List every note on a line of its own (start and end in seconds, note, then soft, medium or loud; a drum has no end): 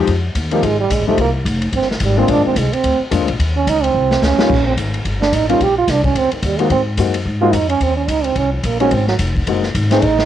0.07 0.34 F2 medium
0.07 kick soft
0.07 ride medium
0.35 0.62 D#2 medium
0.35 kick soft
0.35 hi-hat pedal medium
0.35 ride medium
0.51 0.62 F3 medium
0.51 0.62 G#3 medium
0.51 0.67 A#3 medium
0.51 0.62 C4 medium
0.51 0.62 D#4 medium
0.51 0.62 G4 medium
0.51 ride soft
0.63 0.89 G#1 medium
0.63 0.80 G#3 medium
0.63 kick soft
0.63 ride medium
0.80 0.95 G3 medium
0.90 0.99 A#1 medium
0.90 1.07 G#3 medium
0.90 kick soft
0.90 hi-hat pedal medium
0.90 ride medium
0.99 1.08 G#1 medium
1.07 1.17 F1 medium
1.07 1.17 F3 medium
1.07 1.17 G#3 medium
1.07 1.18 A3 medium
1.07 1.17 C4 medium
1.07 1.18 D#4 medium
1.07 1.17 G4 medium
1.17 1.44 C2 medium
1.17 1.30 A#3 medium
1.17 kick soft
1.17 ride medium
1.45 1.72 F1 medium
1.45 kick soft
1.45 hi-hat pedal medium
1.45 ride medium
1.62 ride soft
1.73 2.00 G1 medium
1.73 1.90 C4 medium
1.73 kick soft
1.73 ride medium
1.82 snare soft
1.91 2.05 D#3 soft
1.91 snare soft
2.00 2.27 G#1 medium
2.00 2.18 G3 medium
2.00 kick soft
2.00 hi-hat pedal soft
2.00 ride medium
2.17 2.54 G#3 medium
2.17 2.54 A#3 medium
2.17 2.54 C4 medium
2.17 2.32 C4 medium
2.17 2.54 D4 medium
2.17 2.54 F4 medium
2.28 2.37 A#1 medium
2.28 2.44 D4 medium
2.28 kick soft
2.28 ride medium
2.37 2.46 G#1 medium
2.45 2.55 F1 medium
2.45 2.59 C4 medium
2.56 2.71 C2 medium
2.56 2.74 G#3 medium
2.56 kick soft
2.56 hi-hat pedal medium
2.56 ride medium
2.72 3.00 C4 medium
2.72 muted upright bass stroke soft
2.72 ride soft
2.84 2.99 D2 medium
2.84 kick soft
2.84 ride medium
3.00 muted upright bass stroke soft
3.11 3.21 F2 medium
3.11 3.26 G#3 medium
3.11 3.26 A#3 medium
3.11 3.26 C4 medium
3.11 3.26 D4 medium
3.11 3.26 F4 medium
3.11 kick soft
3.11 hi-hat pedal medium
3.11 ride medium
3.21 3.29 D2 medium
3.28 3.38 A#1 medium
3.28 ride soft
3.39 3.66 D#2 medium
3.39 kick soft
3.39 ride medium
3.56 3.70 C#4 medium
3.67 3.93 C#2 medium
3.67 3.85 D#4 medium
3.67 kick soft
3.67 hi-hat pedal medium
3.67 ride medium
3.83 4.25 C4 medium
3.83 ride soft
3.94 4.21 C2 medium
4.11 snare medium
4.22 4.37 C#2 medium
4.22 4.66 C#4 medium
4.22 snare medium
4.22 hi-hat pedal medium
4.38 4.48 G3 medium
4.38 4.48 A#3 medium
4.38 4.48 C#4 medium
4.38 4.49 D#4 medium
4.38 4.49 F4 medium
4.38 muted upright bass stroke soft
4.38 snare medium
4.50 4.76 A#1 medium
4.50 kick medium
4.50 crash medium
4.67 4.73 C4 medium
4.77 5.04 G#1 medium
4.77 kick soft
4.77 hi-hat pedal soft
4.77 ride medium
4.94 ride soft
5.05 5.32 G1 medium
5.05 kick soft
5.05 ride medium
5.21 5.36 D4 medium
5.21 snare medium
5.33 5.59 A1 medium
5.33 5.49 D#4 medium
5.33 kick soft
5.33 hi-hat pedal medium
5.33 ride medium
5.49 5.59 G3 medium
5.49 5.59 A#3 medium
5.49 5.59 C#4 medium
5.49 5.59 D#4 medium
5.49 5.64 F4 medium
5.49 5.59 F4 medium
5.49 ride soft
5.60 5.87 A#1 medium
5.60 5.77 G4 medium
5.60 kick soft
5.60 ride medium
5.78 5.92 F4 medium
5.88 6.14 C2 medium
5.88 6.04 D4 medium
5.88 kick soft
5.88 snare soft
5.88 hi-hat pedal medium
5.88 ride medium
6.04 6.19 C#4 medium
6.04 kick soft
6.04 ride soft
6.15 6.30 C#2 medium
6.15 6.32 C4 medium
6.15 kick soft
6.15 ride medium
6.32 6.46 D#3 soft
6.32 muted upright bass stroke soft
6.32 ride soft
6.43 6.69 D#2 medium
6.43 6.61 G3 medium
6.43 kick soft
6.43 hi-hat pedal medium
6.43 ride medium
6.59 6.69 G#3 medium
6.59 6.70 A#3 medium
6.59 6.69 A#3 medium
6.59 6.70 C4 medium
6.59 6.70 D#4 medium
6.59 6.70 F#4 medium
6.59 ride soft
6.70 6.97 G#2 medium
6.70 6.81 C4 medium
6.70 kick soft
6.70 ride medium
6.97 7.24 F#2 medium
6.97 7.13 G#3 medium
6.97 7.13 A#3 medium
6.97 7.13 C4 soft
6.97 7.13 D#4 soft
6.97 7.13 F#4 medium
6.97 kick soft
6.97 hi-hat pedal soft
6.97 ride medium
7.14 ride medium
7.25 7.52 G#2 medium
7.25 kick soft
7.41 7.52 G#3 medium
7.41 7.52 A#3 medium
7.41 7.52 C4 medium
7.41 7.52 D#4 medium
7.41 7.54 F4 medium
7.41 7.52 F#4 medium
7.53 7.80 F2 medium
7.53 7.68 D#4 medium
7.53 kick soft
7.53 hi-hat pedal medium
7.53 ride medium
7.69 7.84 C#4 medium
7.69 ride soft
7.80 8.07 D#2 medium
7.80 7.96 C4 medium
7.80 kick soft
7.80 ride medium
7.97 8.11 C#4 medium
8.08 8.35 C#2 medium
8.08 8.26 D#4 medium
8.08 kick soft
8.08 hi-hat pedal medium
8.08 ride medium
8.24 8.39 C4 medium
8.24 ride soft
8.36 8.63 C2 medium
8.36 8.52 C#4 medium
8.36 kick soft
8.36 ride medium
8.53 8.66 F3 soft
8.63 8.90 A#1 medium
8.63 8.80 A#3 medium
8.63 kick soft
8.63 hi-hat pedal medium
8.63 ride medium
8.80 8.90 G#3 medium
8.80 8.90 A#3 medium
8.80 8.90 C4 medium
8.80 8.95 C#4 loud
8.80 8.91 D#4 medium
8.80 8.91 F#4 medium
8.80 ride soft
8.91 9.18 G#1 medium
8.91 9.08 C4 medium
8.91 kick soft
8.91 ride medium
9.07 9.15 F#3 medium
9.07 snare soft
9.19 9.46 F1 medium
9.19 kick soft
9.19 hi-hat pedal soft
9.19 ride medium
9.35 kick soft
9.35 ride soft
9.47 9.73 F#1 medium
9.47 9.62 G#3 medium
9.47 9.62 A#3 soft
9.47 9.62 C4 medium
9.47 9.62 D#4 soft
9.47 9.62 F#4 medium
9.47 kick soft
9.47 ride medium
9.63 snare soft
9.74 10.01 G#1 medium
9.74 kick soft
9.74 hi-hat pedal medium
9.74 ride medium
9.91 10.01 A3 medium
9.91 10.01 B3 medium
9.91 10.06 C4 medium
9.91 10.01 C4 medium
9.91 10.01 D#4 medium
9.91 10.01 G#4 medium
9.91 snare soft
9.91 ride soft
10.02 10.25 A1 medium
10.02 10.25 D#4 medium
10.02 kick soft
10.02 ride medium
10.18 snare medium